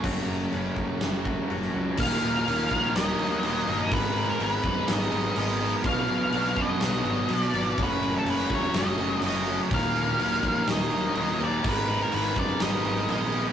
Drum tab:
CC |x---x---x---x---|x-x-x-x-x-x-x-x-|x-x-x-x-x-x-x-x-|x-x-x-x-x-x-x-x-|
SD |--------o----o--|--------o-------|--------o-------|-----o--o-------|
BD |o-----o---o-----|o-----o---------|o-----o---------|o-----o---------|

CC |x-x-x-x-x-x-x-x-|x-x-x-x-x-x-x-x-|x-x-x-x-x-x-x-x-|
SD |-----o--o-------|-----o--o-------|-----o--o-------|
BD |o-----o---------|o-----o---------|o-----o---------|